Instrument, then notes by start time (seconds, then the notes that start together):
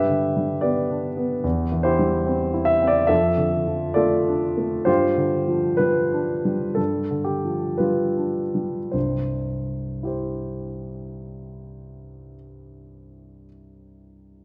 grand piano
Already playing: G2 G4 B4 E5
0.09 D3
0.37 G3
0.61 B3 G4 B4 D5
0.90 D4
1.17 B3
1.44 E2
1.72 E3
1.83 E4 G4 C5
1.99 G3
2.27 C4
2.54 E4
2.65 E5
2.82 C4
2.87 D5
3.07 F2 A4 E5
3.38 D3
3.67 F3
3.94 A3 F4 A4 D5
4.28 D4
4.58 A3
4.85 G2 F4 G4 C5
5.17 D3
5.48 F3
5.77 G3 B4
6.12 D4
6.45 G3
6.75 G2 A4
7.11 D3
7.24 G4
7.45 F3
7.78 G3 F4 G4 B4
8.17 D4
8.55 G3
8.92 C2 G2 C5
10.03 E4 G4
10.07 C5